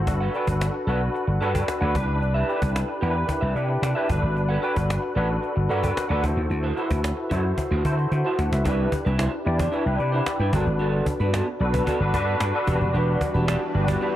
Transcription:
0.07 G1 D4 F#4 A4 B4, muted clean electric guitar stroke, cajon bass
0.21 A4 B4 F#5
0.34 D4 F#4 A4 B4 G5, cajon slap
0.47 G1, cajon bass
0.61 muted clean electric guitar stroke, cajon slap
0.74 muted clean electric guitar stroke
0.87 B1 D4 F#4 A4 B4 F#5, cajon slap
1.01 muted clean electric guitar stroke
1.14 muted clean electric guitar stroke, cajon slap
1.27 G1, muted clean electric guitar stroke
1.41 G2 D4 F#4 A4 B4 F#5, cajon slap
1.54 A4 B4 G5, cajon bass
1.68 muted clean electric guitar stroke, cajon slap
1.81 D2 D4 F#4 A4 B4 F#5
1.95 C2 D4 E4 G4 B4, muted clean electric guitar stroke, cajon bass
2.08 C#2, muted clean electric guitar stroke
2.21 C2, muted clean electric guitar stroke, cajon slap
2.34 G4 B4 E5
2.48 D4 E4 G4 A4 B4 E5, cajon slap
2.56 B4
2.62 C2, muted clean electric guitar stroke, cajon bass
2.75 muted clean electric guitar stroke, cajon slap
2.88 muted clean electric guitar stroke
3.01 E2 D4 E4 G4 A#4 B4 F#5, cajon slap
3.10 B4
3.15 muted clean electric guitar stroke
3.28 muted clean electric guitar stroke, cajon bass
3.41 C2 G4 B4 E5
3.55 C3 D4 E4 G4 B4, muted clean electric guitar stroke, cajon slap
3.69 muted clean electric guitar stroke
3.82 C3, muted clean electric guitar stroke, cajon slap
3.95 D4 E4 G4 B4 E5
4.08 G1 D4 F#4 A4 B4, cajon bass
4.22 G#1, muted clean electric guitar stroke
4.36 G1, muted clean electric guitar stroke, cajon slap
4.49 A4 B4 F#5
4.62 D4 F#4 A4 B4 G5, cajon slap
4.75 G1, muted clean electric guitar stroke, cajon bass
4.89 muted clean electric guitar stroke, cajon slap
5.02 muted clean electric guitar stroke
5.15 A1 D4 F#4 A4 B4 F#5, cajon slap
5.29 muted clean electric guitar stroke
5.43 muted clean electric guitar stroke, cajon slap
5.56 G1, muted clean electric guitar stroke
5.69 G2 D4 F#4 A4 A#4 B4 F#5, cajon slap
5.78 B4
5.83 A4 B4 G5, cajon bass
5.96 muted clean electric guitar stroke, cajon slap
6.09 D2 D4 F#4 A4 B4 F#5
6.23 D2 E4 F#4 A4 C5, muted clean electric guitar stroke, cajon bass
6.36 D#2, muted clean electric guitar stroke
6.50 D2, muted clean electric guitar stroke, cajon slap
6.63 E4 F#4 C5
6.76 E4 F#4 A4 B4 C5, cajon slap
6.90 D2, muted clean electric guitar stroke, cajon bass
7.03 muted clean electric guitar stroke, cajon slap
7.17 muted clean electric guitar stroke
7.30 F#2 E4 F#4 A4 C5 D5, cajon bass
7.44 muted clean electric guitar stroke
7.57 muted clean electric guitar stroke, cajon bass
7.71 D2 E4 F#4 C5
7.84 D3 E4 F#4 A4 C5, muted clean electric guitar stroke, cajon bass
7.98 muted clean electric guitar stroke, cajon slap
8.11 D3 F#5 B5, muted clean electric guitar stroke, cajon slap
8.25 E4 F#4 C5 E5 A5
8.38 D2 C5 F#5, muted clean electric guitar stroke, cajon slap
8.52 C#2 B4 E5, muted clean electric guitar stroke, cajon slap
8.65 C2 D4 E4 G4 B4, cajon bass
8.92 muted clean electric guitar stroke, cajon bass
9.05 C2 D4 E4 B4, cajon slap
9.18 D4 E4 C5, cajon slap
9.32 muted clean electric guitar stroke
9.45 E2 D4 E4 G4 D5, muted clean electric guitar stroke
9.58 D4 E4 C5, cajon bass
9.72 D4 E4 B4, cajon slap
9.85 C2 D4 E4 G4 B4, muted clean electric guitar stroke, cajon slap
9.98 C3 D5 G5, muted clean electric guitar stroke, cajon slap
10.12 D4 E4 C5 F#5 B5, cajon slap
10.26 E5 A5, muted clean electric guitar stroke, cajon slap
10.40 G2 D4 E4 B4 D5 G5, cajon slap
10.53 G1 B3 D4 F#4 A4 A#4, cajon bass
10.61 B4
10.66 G#1, muted clean electric guitar stroke, cajon slap
10.79 G1 B3 F#4 A4, cajon slap
11.06 muted clean electric guitar stroke, cajon bass
11.19 G2 B3 F#4 B4, cajon slap
11.33 B3 F#4 A4, cajon slap
11.47 muted clean electric guitar stroke
11.60 B1 D4 F#4 A4 B4, muted clean electric guitar stroke
11.73 B3 F#4 B4, cajon bass
11.86 B3 F#4 A4, cajon bass
12.00 G1 D4 F#4 A4 B4, muted clean electric guitar stroke
12.13 G2 D4 F#4 A4 B4, muted clean electric guitar stroke, cajon bass
12.26 B3 F#4 B4
12.40 G2, cajon slap
12.54 D4 F#4 A4 B4, muted clean electric guitar stroke, cajon slap
12.67 E1 D4 F#4 G4 A4 B4, cajon bass
12.75 B4
12.81 F1, muted clean electric guitar stroke
12.94 E1 E3 G3 B3 D4 G4 B4, cajon slap
13.21 muted clean electric guitar stroke, cajon bass
13.34 E1 D4 G4 B4, cajon slap
13.47 D4 G4 D5, cajon slap
13.61 muted clean electric guitar stroke
13.74 G1 D4 F#4 G4 B4, muted clean electric guitar stroke
13.88 D4 G4 D5, cajon bass
14.01 D4 G4 B4, cajon slap

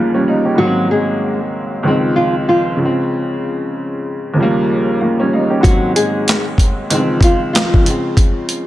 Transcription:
Already playing: D#2 C#3 F3 G3 A#3
0.15 G3 C#4
0.28 A#3 D#4
0.45 C#4 G4
0.55 G#2 D#3 F#3 F#4
0.60 F#3 A#3
0.64 C4
0.91 G#3 G#4
1.83 C#2 D#3 F3 G#3
1.88 C4
2.16 F3 F4
2.49 F3 F4
2.76 C#3 F3
2.82 G#3 C4
4.34 D#2 C#3
4.38 F3 G3
4.43 A#3
5.01 F3 A#3
5.20 G3 C#4
5.33 A#3 D#4
5.50 C#4 G4
5.61 G#2 D#3 F#3 F#4, kick, closed hi-hat
5.65 F#3 A#3
5.70 C4
5.96 G#3 G#4, closed hi-hat
6.28 snare, clap, closed hi-hat
6.58 kick, closed hi-hat
6.90 C#2 D#3 E3 G#3, closed hi-hat
6.94 C4
6.99 F3
7.21 F4, kick, closed hi-hat
7.25 F3
7.53 F3 F4, snare, clap, closed hi-hat
7.74 kick
7.82 C#3 F3
7.86 G#3, closed hi-hat
7.90 C4
8.17 kick, closed hi-hat
8.49 closed hi-hat

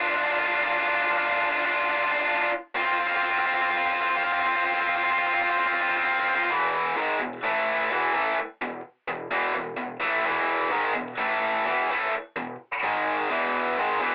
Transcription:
0.00 F4
0.07 D4 F4
0.15 D4 F4
0.24 D4 F4
0.30 D4 F4
0.39 D4 F4
0.46 D4 F4
0.54 D4 F4
0.63 D4 F4
0.71 D4 F4
0.77 D4 F4
0.86 D4 F4
0.94 D4 F4
1.03 D4 F4
1.10 D4 F4
1.17 D4 F4
1.25 D4 F4
1.33 D4 F4
1.41 D4 F4
1.49 D4 F4
1.57 D4 F4
1.64 D4 F4
1.71 D4 F4
1.81 D4 F4
1.89 D4 F4
1.96 D4 F4
2.04 D4 F4
2.12 D4 F4
2.20 D4 F4
2.27 D4 F4
2.35 D4 F4
2.43 D4 F4
2.75 C4 F4
2.82 C4 F4
2.91 C4 F4
2.99 C4 F4
3.06 C4 F4
3.14 C4 F4
3.22 C4 F4
3.30 C4 F4
3.38 C4 F4
3.46 C4 F4
3.53 C4 F4
3.61 C4 F4
3.69 C4 F4
3.77 C4 F4
3.85 C4 F4
3.93 C4 F4
4.01 C4 F4
4.09 C4 F4
4.15 C4 F4
4.24 C4 F4
4.32 C4 F4
4.39 C4 F4
4.46 C4 F4
4.56 C4 F4
4.64 C4 F4
4.72 C4 F4
4.80 C4 F4
4.88 C4 F4
4.96 C4 F4
5.03 C4 F4
5.11 C4 F4
5.18 C4 F4
5.26 C4 F4
5.34 C4 F4
5.42 C4 F4
5.50 C4 F4
5.58 C4 F4
5.66 C4 F4
5.74 C4 F4
5.81 C4 F4
5.89 C4 F4
5.97 C4 F4
6.03 C4 F4
6.12 C4 F4
6.19 C4 F4
6.28 C4 F4
6.35 C4 F4
6.44 C4 F4
6.49 E2 B2 E3
6.95 G#2 D#3 G#3
7.19 E2 B2
7.43 A2 E3 A3
7.90 E2 B2 E3
8.14 A2 E3 A3
8.62 E2 B2
9.08 E2 B2
9.31 E2 B2 E3
9.55 E2 B2
9.77 E2 B2
10.01 A2 E3 A3
10.25 E2 B2 E3
10.70 G#2 D#3 G#3
10.94 E2 B2
11.18 A2 E3 A3
11.65 E2 B2 E3
11.89 A2 E3 A3
12.36 E2 B2
12.83 G#2 D#3 G#3
13.29 E2 B2 E3
13.77 G#2 D#3 G#3
14.00 E2 B2 E3

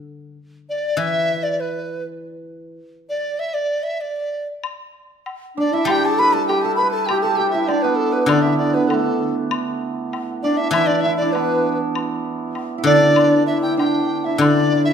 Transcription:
Already playing: D3
0.69 D5
0.97 E3 E5
1.43 D5
1.60 B4
3.09 D5
3.39 E5
3.54 D5
3.83 E5
4.00 D5
4.64 high woodblock
5.26 high woodblock, low woodblock
5.56 D4 D5
5.71 E4 E5
5.85 G3 G4, high woodblock
5.90 G5
6.01 A4 A5
6.19 B4 B5
6.33 A4 A5
6.47 G4 G5, high woodblock, low woodblock
6.62 A4 A5
6.76 B4 B5
6.82 B4
6.91 A4 A5
7.06 G4 G5, high woodblock
7.10 G4
7.21 A4 A5
7.35 G4 A4 G5
7.40 G4
7.50 E4 E5
7.62 E5
7.68 D4 D5, high woodblock, low woodblock
7.82 B3 B4
7.96 A4
8.00 A4
8.12 B4
8.26 D3 D4 D5, high woodblock
8.30 D4
8.42 E5
8.46 E4
8.58 D4 D5
8.74 B3 B4
8.88 A3 A4, high woodblock, low woodblock
9.51 high woodblock
10.13 high woodblock, low woodblock
10.43 D4 D5
10.57 E4 E5
10.71 E3 E4 E5, high woodblock
10.75 E4
10.86 D4 D5
11.01 E4 E5
11.05 E4
11.17 D5
11.21 D4
11.32 B3 B4, high woodblock, low woodblock
11.95 high woodblock
12.55 high woodblock, low woodblock
12.78 E4
12.84 D3 D4 D5
13.16 high woodblock
13.46 E4 E5
13.62 G5
13.71 E4
13.77 D4 G5, high woodblock, low woodblock
14.24 E4 E5
14.38 D3 D4 D5, high woodblock
14.85 E4 E5

